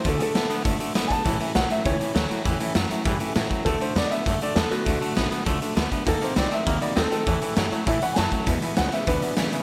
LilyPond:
<<
  \new Staff \with { instrumentName = "Honky-tonk piano" } { \time 4/4 \key d \major \tempo 4 = 200 r1 | r1 | r1 | r1 |
r1 | <dis'' fis'' a''>8 <dis'' fis'' a''>8 <dis'' fis'' b''>8 <dis'' fis'' a''>8 <dis'' fis'' b''>8 <dis'' fis'' b''>8 <dis'' fis'' a''>8 <dis'' fis'' a''>8 | <cis'' e'' a''>8 <cis'' e'' a''>8 <cis'' e'' g''>8 <cis'' e'' a''>8 <cis'' e'' a''>8 <cis'' e'' b''>8 <cis'' e'' fis''>8 <cis'' e'' a''>8 | <b' e'' gis''>8 <b' e'' gis''>8 <b' e'' gis''>8 <b' e'' gis''>8 <b' e'' gis''>8 <b' e'' fis''>8 <b' e'' gis''>8 <b' e'' gis''>8 | }
  \new Staff \with { instrumentName = "Upright piano" } { \time 4/4 \key d \major a'8 <gis' a'>4 r2 <gis'' a''>8~ | <gis'' a''>4 fis''8 e''8 cis''2~ | cis''4 r2. | a'8 c''8 d''8 <dis'' e''>4 d''8 a'8 <a fis'>8~ |
<a fis'>4. r2 r8 | a'8 bis'8 d''8 <dis'' e''>4 d''8 a'8 a'8~ | a'4. r8 e''8 fis''8 <gis'' a''>4 | r4 fis''8 e''8 <d' b'>2 | }
  \new Staff \with { instrumentName = "Steel-string acoustic guitar" } { \time 4/4 \key d \major <d a d' fis'>8 <a d' fis'>8 <d a d' fis'>8 <a d' fis'>8 <d a d' fis'>8 <a d' fis'>8 <d a d' fis'>8 <a d' fis'>8 | <a, e a cis' e'>8 <a cis' e'>8 <a, e a cis' e'>8 <a cis' e'>8 <e a cis' e'>8 <a cis' e'>8 <a, e a cis' e'>8 <a cis' e'>8 | <a, e a cis' e'>8 <a cis' e'>8 <a, e a cis' e'>8 <a cis' e'>8 <e a cis' e'>8 <a cis' e'>8 <a, e a cis' e'>8 <a cis' e'>8 | <d a d' fis'>8 <a d' fis'>8 <d a d' fis'>8 <a d' fis'>8 <d a d' fis'>8 <a d' fis'>8 <d a d' fis'>8 <a d' fis'>8 |
<d a d' fis'>8 <a d' fis'>8 <d a d' fis'>8 <a d' fis'>8 <d a d' fis'>8 <a d' fis'>8 <d a d' fis'>8 <a d' fis'>8 | <dis a bis fis'>8 <a bis fis'>8 <dis a bis fis'>8 <a bis fis'>8 <dis a bis fis'>8 <a bis fis'>8 <dis a bis fis'>8 <a bis fis'>8 | <a, e a cis' e'>8 <a cis' e'>8 <a, e a cis' e'>8 <a cis' e'>8 <e a cis' e'>8 <a cis' e'>8 <a, e a cis' e'>8 <a cis' e'>8 | <e, b, e gis b e'>8 <e gis b e'>8 <e, b, e gis b e'>8 <e gis b e'>8 <e gis b e'>8 <e gis b e'>8 <e, b, e gis b e'>8 <e gis b e'>8 | }
  \new Staff \with { instrumentName = "Clean electric guitar" } { \clef bass \time 4/4 \key d \major <d a>8 <d a>8 <d b>8 <d b>8 <d a>8 <d a>8 <d b>8 <d b>8 | <a, e>8 <a, e>8 <a, fis>8 <a, fis>8 <a, e>8 <a, e>8 <a, fis>8 <a, fis>8 | <a, e>8 <a, e>8 <a, fis>8 <a, fis>8 <a, e>8 <a, e>8 <a, fis>8 <a, fis>8 | <d a>8 <d a>8 <d b>8 <d b>8 <d a>8 <d a>8 <d b>8 <d b>8 |
<d a>8 <d a>8 <d b>8 <d b>8 <d a>8 <d a>8 <d b>8 <d b>8 | <dis bes>8 <dis bes>8 <dis bis>8 <dis bis>8 <dis bes>8 <dis bes>8 <dis bis>8 <dis bis>8 | <a, e>8 <a, e>8 <a, fis>8 <a, fis>8 <a, e>8 <a, e>8 <a, fis>8 <a, fis>8 | <e, b,>8 <e, b,>8 <e, cis>8 <e, cis>8 <e, b,>8 <e, b,>8 <e, cis>8 <e, cis>8 | }
  \new Staff \with { instrumentName = "Upright bass" } { \clef bass \time 4/4 \key d \major d,8 r8 a,,8 r8 fis,,8 r8 g,,8 r8 | a,,8 r8 b,,8 r8 cis,8 r8 d,8 r8 | e,8 r8 fis,8 r8 g,8 r8 a,8 r8 | d,8 r8 e,8 r8 fis,8 r8 e,8 r8 |
d,8 r8 a,,8 r8 cis,8 r8 d,8 r8 | dis,8 r8 bis,,8 r8 d,8 r8 dis,8 r8 | e,8 r8 g,8 r8 a,8 r8 fis,8 r8 | e,8 r8 cis,8 r8 d,8 r8 e,8 r8 | }
  \new DrumStaff \with { instrumentName = "Drums" } \drummode { \time 4/4 <hh bd>8 hh8 <hh sn>8 hh8 <hh bd>8 hh8 <hh sn>8 <hh bd>8 | <hh bd>8 hh8 <hh sn>8 hh8 <hh bd>8 hh8 <hh sn>8 hh8 | <hh bd>8 hh8 <hh sn>8 hh8 <hh bd>8 hh8 <hh sn>8 <hh bd>8 | <hh bd>8 hh8 <hh sn>8 hh8 <hh bd>8 hh8 <hh sn>8 hh8 |
<hh bd>8 hh8 <hh sn>8 hh8 <hh bd>8 hh8 <hh sn>8 <hh bd>8 | <hh bd>8 hh8 <hh sn>8 hh8 <hh bd>8 hh8 <hh sn>8 hh8 | <hh bd>8 hh8 <hh sn>8 hh8 <hh bd>8 hh8 <hh sn>8 <hh bd>8 | <hh bd>8 hh8 <hh sn>8 hh8 <hh bd>8 hh8 <hh sn>8 hh8 | }
>>